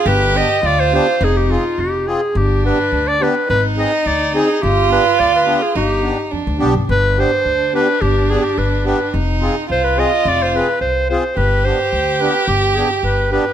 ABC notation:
X:1
M:2/4
L:1/16
Q:1/4=106
K:none
V:1 name="Clarinet"
B2 _e2 d c c2 | _A G F2 G2 A2 | G2 B3 d B2 | B z _e2 d2 _A2 |
G2 B2 d B2 _A | G4 z4 | B2 c4 B2 | G2 _A G B2 B2 |
z4 c B _e2 | d c B2 c2 c2 | B2 c4 B2 | G2 _A G B2 B2 |]
V:2 name="Violin"
G4 F4 | _E6 z2 | D8 | _E8 |
F8 | _E4 D4 | D8- | D8 |
_E4 F4- | F6 z2 | G8- | G8 |]
V:3 name="Accordion"
z2 [B,DG] z3 [B,DG] z | z2 [CF_A] z3 [CFA] z | z2 [B,DG] z3 [B,DG] z | z2 [C_E_A] z3 [CEA] z |
z2 [B,DG] z3 [B,DG] z | z2 [B,DG] z3 [B,DG] z | z2 [B,DG] z3 [B,DG] z | z2 [B,DG] z3 [B,DG] z |
z2 [CF_A] z3 [CFA] z | z2 [CF_A] z3 [CFA] z | z2 [B,DG] z3 [B,DG] z | z2 [B,DG] z3 [B,DG] z |]
V:4 name="Upright bass" clef=bass
G,,,4 D,,4 | F,,,4 F,,,4 | G,,,4 D,,4 | _A,,,4 D,,4 |
G,,,4 D,,4 | G,,,4 F,, D,, B,,, G,,, | G,,,4 D,,4 | G,,,4 G,,,4 |
F,,,4 C,,4 | F,,,4 C,,4 | G,,,4 D,,4 | G,,,4 G,,,4 |]